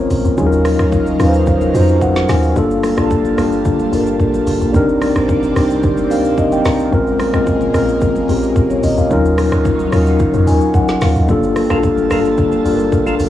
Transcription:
Already playing: analog synth pad A#2 G#3 A#3, tine electric piano G#3 C4 C#4 F4 A#4 C5 C#5
0.11 log drum bass A#1, open hi-hat, low conga, shaker
0.25 log drum bass C2, shaker
0.37 log drum bass D#2, tine electric piano F#3 C#4 D#4 F4 G#4, analog synth pad C#4 D#4 A#4 F5, kick, low conga, shaker
0.46 tine electric piano A#4
0.52 shaker
0.65 cross-stick, open hi-hat, high conga, shaker
0.79 log drum bass D2, cross-stick, shaker
0.92 kick, low conga, shaker
1.06 high conga, shaker
1.18 log drum bass D#2, tine electric piano F#3 C#4 D#4 F4 B4, cross-stick, open hi-hat, high conga, shaker
1.28 tine electric piano C5
1.34 shaker
1.47 kick, low conga, shaker
1.61 high conga, shaker
1.73 log drum bass F2, tine electric piano C#4 D#4 F4 F#4 C5, open hi-hat, high conga, shaker
1.88 shaker
2.01 tine electric piano F#5, kick, shaker
2.16 snare, high conga, shaker
2.29 log drum bass D#2, tine electric piano G#5, cross-stick, snare, open hi-hat, low conga, shaker
2.43 shaker
2.55 log drum bass G1, tine electric piano G3 A#3 D4 F4 A4, analog synth pad G3 A#3 F4 A5, kick, low conga, shaker
2.71 shaker
2.83 cross-stick, open hi-hat, high conga, shaker
2.96 log drum bass A#1, tine electric piano G3 A#3 D4 F4 A4, cross-stick, shaker
3.10 kick, low conga, shaker
3.25 high conga, shaker
3.37 log drum bass G1, tine electric piano G3 A#3 D4 F4 G4, cross-stick, open hi-hat, high conga, shaker
3.52 shaker
3.65 kick, low conga, shaker
3.79 high conga, shaker
3.91 log drum bass G1, tine electric piano G3 A#3 D4 F4 A#4, open hi-hat, high conga, shaker
4.07 shaker
4.20 log drum bass A#1, kick, shaker
4.34 high conga, shaker
4.47 log drum bass G1, open hi-hat, low conga, shaker
4.61 log drum bass A#1, shaker
4.73 log drum bass C2, analog synth pad C3 A#3 C4 D5, tine electric piano G3 C4 D4 D#4 A#4, kick, low conga, shaker
4.89 shaker
5.02 cross-stick, open hi-hat, high conga, shaker
5.16 log drum bass A#1, cross-stick, shaker
5.28 kick, low conga, shaker
5.43 high conga, shaker
5.55 log drum bass C2, tine electric piano G3 C4 D4 D#4 G4, cross-stick, open hi-hat, high conga, shaker
5.70 shaker
5.83 kick, low conga, shaker
5.97 high conga, shaker
6.09 log drum bass D2, tine electric piano G3 C4 D4 D#4 A#4 F5, open hi-hat, high conga, shaker
6.25 shaker
6.38 tine electric piano D#5, kick, shaker
6.52 tine electric piano G5, high conga, shaker
6.65 log drum bass C2, tine electric piano A#5, cross-stick, snare, open hi-hat, low conga, shaker
6.79 shaker
6.91 log drum bass A#1, analog synth pad A#2 G#3 A#3, tine electric piano G#3 C4 C#4 F4 A#4, kick, low conga, shaker
7.07 shaker
7.20 cross-stick, open hi-hat, high conga, shaker
7.33 log drum bass C2, tine electric piano G#3 C4 C#4 F4 A#4, cross-stick, shaker
7.46 kick, low conga, shaker
7.61 high conga, shaker
7.73 log drum bass A#1, tine electric piano G#3 C4 C#4 F4 A#4, cross-stick, open hi-hat, high conga, shaker
7.89 shaker
8.01 kick, low conga, shaker
8.16 high conga, shaker
8.27 log drum bass A#1, tine electric piano G#3 C4 C#4 F4 G4, open hi-hat, high conga, shaker
8.43 shaker
8.56 log drum bass C2, kick, shaker
8.70 tine electric piano C#5, high conga, shaker
8.83 log drum bass A#1, tine electric piano D#5, open hi-hat, low conga, shaker
8.98 log drum bass C2, tine electric piano F5, shaker
9.09 log drum bass D#2, tine electric piano F#3 C#4 D#4 F4 A#4, analog synth pad F#3 C#4 D#4 F4, kick, low conga, shaker
9.25 shaker
9.38 cross-stick, open hi-hat, high conga, shaker
9.52 log drum bass D2, cross-stick, shaker
9.64 kick, low conga, shaker
9.79 high conga, shaker
9.91 log drum bass D#2, tine electric piano F#3 C#4 D#4 F4 A#4, cross-stick, open hi-hat, high conga, shaker
10.07 shaker
10.19 kick, low conga, shaker
10.34 log drum bass F2, high conga, shaker
10.46 log drum bass D#2, tine electric piano F#3 C#4 D#4 F4 A#4 G#5, open hi-hat, high conga, shaker
10.61 shaker
10.74 log drum bass C#2, tine electric piano F#5, kick, shaker
10.88 snare, high conga, shaker
11.01 log drum bass D#2, tine electric piano F5, cross-stick, snare, open hi-hat, low conga, shaker
11.16 log drum bass D#2, shaker
11.28 log drum bass G1, tine electric piano G3 A#3 D4 F4 A4, analog synth pad G3 A#3 F4 A5, kick, low conga, shaker
11.43 shaker
11.56 cross-stick, open hi-hat, high conga, shaker
11.69 log drum bass A#1, tine electric piano G3 A#3 D4 F4 A4, tonewheel organ F4 A4 A#4, cross-stick, shaker
11.83 kick, low conga, shaker
11.97 high conga, shaker
12.09 log drum bass G1, tine electric piano G3 A#3 D4 F4 A4, tonewheel organ F4 A4 A#4, cross-stick, open hi-hat, high conga, shaker
12.25 shaker
12.38 kick, low conga, shaker
12.52 high conga, shaker
12.64 log drum bass G1, tine electric piano G3 A#3 D4 F4 A4, open hi-hat, high conga, shaker
12.74 tine electric piano A#4
12.79 shaker
12.92 log drum bass A#1, kick, shaker
13.06 tonewheel organ F4 A4 A#4, high conga, shaker
13.20 log drum bass G1, open hi-hat, low conga, shaker

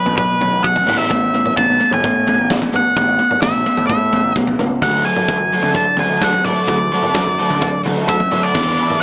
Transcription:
Already playing: overdriven electric guitar B2 F#3, lead electric guitar B4
0.06 picked electric bass B2, floor tom
0.17 overdriven electric guitar B2 F#3, lead electric guitar B4, kick, mid tom
0.41 overdriven electric guitar B2 F#3, floor tom
0.53 picked electric bass B1
0.63 overdriven electric guitar B2 F#3, lead electric guitar F#5, kick
0.76 floor tom
0.86 picked electric bass A1, overdriven electric guitar A3 B3 E4, mid tom
0.98 lead electric guitar E5
1.10 overdriven electric guitar A3 B3, kick, floor tom
1.34 overdriven electric guitar A3 B3
1.46 mid tom
1.57 picked electric bass A1, overdriven electric guitar A3 B3, lead electric guitar A5, kick, floor tom
1.69 picked electric bass B1
1.80 overdriven electric guitar A3 B3
1.91 picked electric bass A2, lead electric guitar G#5, floor tom
2.04 overdriven electric guitar A3 B3, kick, mid tom
2.27 overdriven electric guitar A3 B3, floor tom
2.38 picked electric bass A1
2.50 overdriven electric guitar A3 B3, kick, snare
2.62 floor tom
2.73 overdriven electric guitar A3 B3, lead electric guitar F#5, mid tom
2.96 picked electric bass A1, overdriven electric guitar A3 B3, kick, floor tom
3.19 overdriven electric guitar A3 B3
3.31 mid tom
3.42 picked electric bass A1, overdriven electric guitar A3 B3, lead electric guitar E5, kick, snare, floor tom
3.55 picked electric bass B1
3.66 overdriven electric guitar A3 B3
3.77 picked electric bass A2, floor tom
3.87 overdriven electric guitar A3 B3, lead electric guitar E5, kick, mid tom
4.13 overdriven electric guitar A3 B3, floor tom
4.24 picked electric bass A1
4.36 picked electric bass B1, overdriven electric guitar A3 B3, kick
4.47 floor tom
4.59 picked electric bass C#2, overdriven electric guitar A3 B3, mid tom
4.82 picked electric bass D2, overdriven electric guitar D3 F#3 A3, lead electric guitar F#5, kick, floor tom
5.05 overdriven electric guitar D3 F#3 A3 D4 F#4, lead electric guitar G#5
5.16 mid tom
5.28 picked electric bass D2, overdriven electric guitar D3 F#3, kick, floor tom
5.40 picked electric bass F#2
5.53 overdriven electric guitar D3 F#3 A3 D4 F#4
5.62 picked electric bass D3, floor tom
5.74 overdriven electric guitar D3 F#3, lead electric guitar A5, kick, mid tom
5.97 overdriven electric guitar D3 F#3 A3 D4 F#4, lead electric guitar G#5, floor tom
6.10 picked electric bass D2
6.21 overdriven electric guitar D3 F#3, lead electric guitar F#5, kick, snare
6.33 floor tom
6.44 overdriven electric guitar D3 F#3 A3 D4 F#4, lead electric guitar D5, mid tom
6.67 picked electric bass D2, overdriven electric guitar D3 F#3, kick, floor tom
6.92 overdriven electric guitar D3 F#3 A3 D4 F#4
7.03 mid tom
7.14 picked electric bass D2, overdriven electric guitar D3 F#3, kick, snare, floor tom
7.27 picked electric bass F#2
7.39 overdriven electric guitar D3 F#3 A3 D4 F#4
7.50 picked electric bass D3, floor tom
7.61 overdriven electric guitar D3 F#3, kick, mid tom
7.84 overdriven electric guitar D3 F#3 A3 D4 F#4, floor tom
7.96 picked electric bass D2
8.09 overdriven electric guitar D3 F#3, lead electric guitar E5, kick
8.20 floor tom
8.31 overdriven electric guitar D3 F#3 A3 D4 F#4, mid tom
8.43 lead electric guitar D5
8.54 picked electric bass E2, overdriven electric guitar E3 B3 D4, kick, floor tom
8.79 overdriven electric guitar E3 G#3 B3 D4 E4
8.90 mid tom

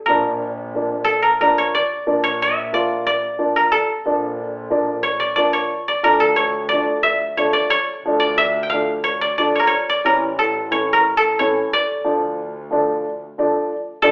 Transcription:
Already playing: koto G4 A4
0.06 double bass A#1, upright piano F3 A#3 D4, koto A#4
0.75 upright piano F3 A#3 D4
1.04 koto A4
1.22 koto A#4
1.41 upright piano F3 A#3 D4, koto A#4
1.58 koto C#5
1.75 koto D5
2.06 double bass A#1, upright piano F3 A#3 D4
2.24 koto C#5
2.42 koto E5
2.73 upright piano F3 A#3 F4, koto D5
3.07 koto D5
3.39 upright piano F3 A#3 D4
3.56 koto A#4
3.72 koto A4
4.05 double bass A#1, upright piano F3 A#3 D4
4.70 upright piano F3 A#3 D4
5.03 koto C#5
5.20 koto D5
5.36 upright piano F3 A#3 D4, koto D5
5.53 koto C#5
5.88 koto D5
6.03 double bass D2, upright piano F3 A3 D4, koto A#4
6.20 koto A4
6.36 koto C#5
6.69 upright piano F3, koto D5
6.73 upright piano A3 D4
7.03 koto E5
7.37 upright piano F3 A3 D4, koto C#5
7.53 koto D5
7.70 koto C#5
8.04 double bass D2, upright piano F3 A3 D4
8.20 koto D5
8.38 koto E5
8.63 koto G5
8.70 upright piano F3 A3 D4, koto F5
9.04 koto C#5
9.21 koto D5
9.38 upright piano F3 A3 D4, koto D5
9.55 koto C#5
9.59 koto A#4
9.67 koto C#5
9.89 koto D5
10.05 double bass A1, upright piano E3 C#4, koto A#4
10.39 koto A4
10.71 upright piano E3 A3 C#4, koto C#5
10.93 koto A#4
11.17 koto A4
11.39 upright piano E3 A3 C#4, koto C#5
11.73 koto D5
12.03 double bass D2, upright piano F3 A3 D4
12.71 upright piano F3 A3 D4
13.38 upright piano F3 A3 D4
14.02 double bass D2, upright piano F3 A3 D4, koto A4

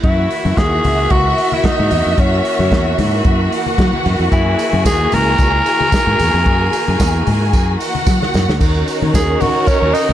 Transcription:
0.04 fingered electric bass F#2, string section E3 A#3 F#4, tenor saxophone E4, violin section F#4 E5, kick, closed hi-hat
0.29 open hi-hat, muted conga
0.45 fingered electric bass F#2, high conga
0.57 fingered electric bass D#2, tenor saxophone G#4, kick, snare, closed hi-hat, muted conga
0.84 fingered electric bass C#2, open hi-hat, high conga, low conga
1.10 fingered electric bass C#2, tenor saxophone F#4, kick, closed hi-hat, high conga
1.38 open hi-hat, muted conga
1.52 tenor saxophone E4, high conga
1.64 tenor saxophone D#4, kick, snare, closed hi-hat, muted conga, high conga
1.79 fingered electric bass G#2, high conga
1.91 fingered electric bass E2, open hi-hat, low conga
2.06 fingered electric bass F2
2.18 fingered electric bass F#2, tenor saxophone C#4, kick, closed hi-hat
2.45 open hi-hat
2.59 fingered electric bass F#2, high conga
2.72 fingered electric bass E2, kick, snare, closed hi-hat
2.98 fingered electric bass G#2, open hi-hat, muted conga, high conga, low conga
3.25 fingered electric bass F#2, kick, closed hi-hat, high conga
3.51 violin section F#4 F#5, open hi-hat
3.66 high conga
3.78 fingered electric bass F#3, kick, snare, closed hi-hat, muted conga, high conga
3.93 high conga
4.05 fingered electric bass F#2, open hi-hat, muted conga, low conga
4.20 fingered electric bass F2
4.32 fingered electric bass F#2, tenor saxophone E4, violin section G#4 G#5, kick, closed hi-hat, tambourine
4.59 open hi-hat, tambourine
4.73 fingered electric bass F#2, high conga
4.85 fingered electric bass D#2, tenor saxophone G#4, kick, snare, closed hi-hat, tambourine
5.12 fingered electric bass C#2, tenor saxophone A#4, open hi-hat, tambourine, high conga, low conga
5.38 fingered electric bass C#2, kick, closed hi-hat, tambourine, muted conga, high conga
5.66 open hi-hat, tambourine, muted conga
5.81 high conga
5.92 kick, snare, closed hi-hat, tambourine, muted conga, high conga
6.07 fingered electric bass G#2, high conga
6.19 fingered electric bass E2, open hi-hat, tambourine, low conga
6.34 fingered electric bass F2
6.46 fingered electric bass F#2, kick, closed hi-hat
6.72 open hi-hat, tambourine, muted conga
6.88 fingered electric bass F#2, high conga
7.00 fingered electric bass E2, kick, snare, closed hi-hat, tambourine
7.27 fingered electric bass G#2, open hi-hat, muted conga, high conga, low conga
7.53 fingered electric bass F#2, kick, closed hi-hat, tambourine, high conga
7.80 violin section F#4 F#5, open hi-hat, tambourine
7.95 high conga
8.07 fingered electric bass F#3, kick, snare, tambourine, high conga
8.22 snare, high conga
8.34 fingered electric bass F#2, snare, tambourine, muted conga, low conga
8.48 fingered electric bass D2, snare
8.60 fingered electric bass D#2, string section D#3 C#4 F#4, violin section D#4 A#4, kick, crash, tambourine, muted conga
8.88 open hi-hat, tambourine
9.02 fingered electric bass D#3, high conga
9.14 fingered electric bass D#2, tenor saxophone G#4, kick, snare, tambourine
9.40 tenor saxophone F#4, open hi-hat, tambourine, muted conga, high conga, low conga
9.67 tenor saxophone C#4, kick, closed hi-hat, tambourine, high conga
9.82 fingered electric bass D#2
9.94 tenor saxophone D#4, open hi-hat, tambourine, muted conga
10.09 fingered electric bass C#2, high conga

